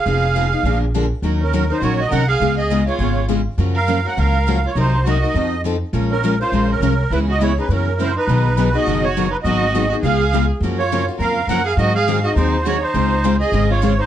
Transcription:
X:1
M:4/4
L:1/8
Q:"Swing" 1/4=205
K:Db
V:1 name="Accordion"
f4- f z3 | z B2 c d e g f- | f e2 d3 z2 | z f2 g f3 d |
c2 e4 z2 | z B2 c2 B3 | _c e d c B2 =c _c- | _c3 ^d2 _d2 =B |
e3 e f3 z | z d2 z f2 g f | e f2 e c2 d c- | c3 e2 d2 c |]
V:2 name="Violin"
A4- A z3 | z D2 E G G B A- | A A2 F3 z2 | z B2 B B3 F |
E2 G2 z4 | z D2 F2 D3 | _F G F E D2 F E- | E3 ^F2 F2 ^D |
G3 G A3 z | z F2 z B2 B A | G A2 G E2 G E- | E3 A2 F2 E |]
V:3 name="Steel-string acoustic guitar"
[F,_CEA] z [F,CEA] [CEA] [=D,F,B,=DA] z [D,F,B,DA] z | [E,G,DEB] z [E,G,DEB] [DEB] [E,G,DEB] z [E,G,DEB] z | [D,A,_CFA] z [D,A,CFA] [CFA] [D,A,CFA] z [D,A,CFA] z | [D,F,B,DG] z [D,F,B,DG] [B,DG] [D,F,B,DG] z [D,F,B,DG] z |
[C,G,B,EB] z [C,G,B,EB] [B,EB] [F,CE=A] z [F,CEA] z | [F,A,DFB] z [F,A,DFB] [DFB] [F,A,DFB] z [F,A,DFB] z | [D,_F,_CDA] z [D,F,CDA] [CDA] [D,F,B,DG] z [D,F,B,DG] z | [=B,,^D,^F,=B,^D^G] z [B,,D,F,B,DG] [F,B,DG] [B,,D,F,B,DG] z [B,,D,F,B,DG] z |
[E,G,_CEA] z [E,G,CEA] [CEA] [D,A,CFA] z [D,A,CFA] z | [D,F,B,DG] z [D,F,B,DG] [B,DG] [D,F,B,DG] z [D,F,B,DG] z | [E,G,CEA] z [E,G,CEA] [CEA] [E,G,CEA] z [E,G,CEA] z | [D,A,CFA] z [D,A,CFA] [CFA] [D,A,CFA] z [D,A,CFA] z |]
V:4 name="Steel-string acoustic guitar"
[F,_CEA] z [F,CEA] z [=D,F,B,=DA] z [D,F,B,DA] z | [E,G,DEB] z [E,G,DEB] z [E,G,DEB] z [E,G,DEB] z | [D,A,_CFA] z [D,A,CFA] z [D,A,CFA] z [D,A,CFA] z | [G,B,DFB] z [G,B,DFB] z [G,B,DFB] z [G,B,DFB] z |
[C,G,B,EB] z [C,G,B,EB] z [F,CE=A] z [F,CEA] z | [F,A,DFB] z [F,A,DFB] z [F,A,DFB] z [F,A,DFB] z | [D,A,_C_FA] z [D,A,CFA] z [G,DFB] z [G,DFB] z | [=B,,^D,^F,=B,^D^G] z [B,,D,F,B,DG] z [B,,D,F,B,DG] z [B,,D,F,B,DG] z |
[E,G,_CEA] z [E,G,CEA] z [D,A,CFA] z [D,A,CFA] z | [G,B,DFB] z [G,B,DFB] z [G,B,DFB] z [G,B,DFB] z | [E,G,CEA] z [E,G,CEA] z [E,G,CEA] z [E,G,CEA] z | [D,A,CFA] z [D,A,CFA] z [D,A,CFA] z [D,A,CFA] z |]
V:5 name="Upright bass" clef=bass
F,,,4 B,,,4 | E,,4 B,,,2 C,,2 | D,,4 A,,,4 | G,,4 D,,4 |
C,,4 F,,4 | B,,,4 B,,,2 C,,2 | D,,4 G,,4 | =B,,,4 ^F,,,4 |
A,,,4 D,,4 | G,,4 F,,2 G,,2 | A,,4 E,,4 | D,,4 A,,,4 |]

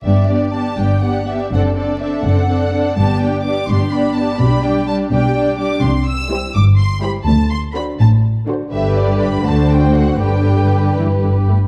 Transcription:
X:1
M:6/8
L:1/8
Q:3/8=83
K:G
V:1 name="Violin section"
e d a g f e | f d e f3 | a g d' c' b a | b g a g2 d' |
c' e'2 d' c' b | a c' b a z2 | e d b a g f | g3 z3 |]
V:2 name="Violin section"
[Gd] [Gd] [Gd] [Gd] [Gd] [Gd] | [Ad] [Ad] [Ad] [Ad] [Ad] [Ad] | [Gd] [Gd] [Gd] [Gd] [Gd] [Gd] | [Gd] [Gd] [Gd] [Gd] [Gd] [Gd] |
z2 [Gc] z2 [Gc] | z2 [Fc] z2 [Fc] | [GB]3 [Fc]3 | [GB]4- [GB] z |]
V:3 name="Viola section"
[B,D] [B,D] [B,D] [B,D] [B,D] [B,D] | [CD] [CD] [CD] [CD] [CD] [CD] | [B,D] [B,D] [B,D] [B,D] [B,D] [B,D] | [G,D] [G,D] [G,D] [G,D] [G,D] [G,D] |
z2 [G,E] z2 [G,E] | z2 [D,D] z2 [D,D] | [D,D]3 [D,D]3 | [D,D]3 E, D, A, |]
V:4 name="Cello section" clef=bass
G,,3 G,,3 | F,,3 F,,3 | G,,3 G,,3 | B,,3 B,,3 |
C,3 G,,3 | D,,3 A,,3 | G,,3 D,,3 | G,,4- G,, z |]
V:5 name="Double bass section" clef=bass
G,,,3 G,,,3 | F,,,3 F,,,3 | G,,,3 G,,,3 | B,,,3 B,,,3 |
C,,3 G,,,3 | D,,3 A,,,3 | G,,,3 D,,3 | G,,,4- G,,, z |]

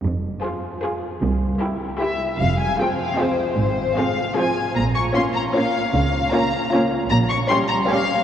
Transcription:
X:1
M:3/4
L:1/8
Q:1/4=153
K:Fm
V:1 name="Violin section"
z2 c2 c2 | z2 B2 [B=e]2 | f a g f c2 | c2 f2 a2 |
b d' c' b f2 | f2 b2 z2 | b d' c' b f2 |]
V:2 name="Violin section"
z2 A2 A2 | z2 G2 G2 | z2 [FA]2 [FA]2 | z2 [FA]2 [FA]2 |
z2 [Fd]2 [Fd]2 | z2 [Fd]2 [Fd]2 | z2 [Gd]2 [Gd]2 |]
V:3 name="Viola section"
z2 F2 F2 | z2 =E2 E2 | z2 [F,C]2 [F,C]2 | z2 [F,C]2 [F,C]2 |
z2 [B,D]2 [B,D]2 | z2 [B,D]2 [B,D]2 | z2 [G,D]2 [G,D]2 |]
V:4 name="Cello section" clef=bass
F,,2 z4 | C,,2 z4 | F,,2 z4 | A,,2 z4 |
B,,2 z4 | D,2 z4 | B,,2 z4 |]
V:5 name="Double bass section" clef=bass
F,,,2 z4 | C,,2 z4 | F,,,2 z4 | A,,,2 z4 |
B,,,2 z4 | D,,2 z4 | B,,,2 z4 |]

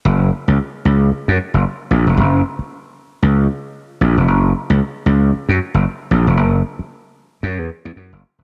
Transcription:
X:1
M:4/4
L:1/16
Q:"Swing 16ths" 1/4=114
K:F#
V:1 name="Slap bass" clef=bass
F,,,2 z C,, z2 C,,2 z F,, z F,,, z2 A,,, E,,, | F,,,2 z6 C,,2 z4 A,,, E,,, | F,,,2 z C,, z2 C,,2 z F,, z F,,, z2 A,,, E,,, | F,,,2 z6 F,, =E,, z E,, F,, F,,, z ^E,,, |]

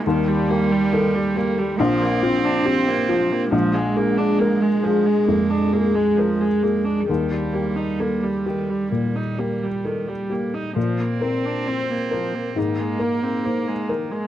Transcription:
X:1
M:4/4
L:1/16
Q:1/4=68
K:Bb
V:1 name="Felt piano"
E,,2 G2 A2 G2 B,,,2 F2 G2 F2 | B,,,2 _A2 B2 A2 F,,2 A2 B2 A2 | E,,2 G2 A2 G2 B,,2 G2 A2 G2 | B,,2 B2 c2 B2 _A,,2 B2 c2 B2 |]
V:2 name="Viola"
E, G, B, G, E, G, B, G, F, B, C D C B, F, B, | F, _A, B, D B, A, F, A, B, D B, A, F, A, B, D | E, G, B, E B, G, E, G, B, E B, G, E, G, B, E | F, B, C D C B, F, B, E, _A, B, C B, A, E, A, |]
V:3 name="Cello"
G,8 C8 | _A,16 | G,16 | C8 B,8 |]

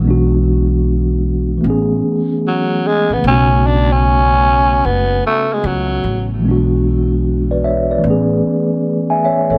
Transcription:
X:1
M:4/4
L:1/16
Q:"Swing 16ths" 1/4=75
K:Bdor
V:1 name="Tine electric piano"
z16 | z16 | z4 z [Bd] [ce] [Bd]2 z4 [eg] [ce] [Ac] |]
V:2 name="Tine electric piano"
[E,G,B,DF]8 [E,A,B,CG]8 | [C,A,B,CF]16 | [E,G,B,DF]8 [E,A,B,CG]8 |]
V:3 name="Tenor saxophone"
z12 F,2 G, B, | C2 D C4- C B,2 A, G, F,3 z | z16 |]
V:4 name="Upright bass" clef=bass
B,,,8 A,,,2 z4 z A,,, | B,,,8 F,,,2 z2 C,,2 A,,,2 | B,,,8 A,,,2 z4 z A,,, |]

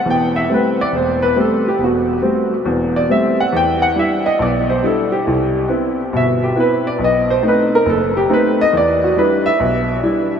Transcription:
X:1
M:4/4
L:1/8
Q:"Swing" 1/4=138
K:Em
V:1 name="Grand piano"
g e B d c B A G | F3 z2 d e f | g f e ^d =d c A G- | G2 z2 e G B d |
^d c B ^A =A G B d | d F B e2 z3 |]
V:2 name="Grand piano"
[E,,,E,,]2 [G,A,C] z E,,,2 [G,A,C] z | E,,,2 [G,A,C] z [E,,,E,,]2 [G,A,C] z | E,,2 [G,DE] z B,,,2 [G,DE] z | C,,2 [B,CE] z [G,,,B,,]2 [B,CE] z |
B,,,2 [A,B,C^D] z F,,,2 [A,B,CD] z | E,,2 [G,DE] z B,,,2 [G,DE] z |]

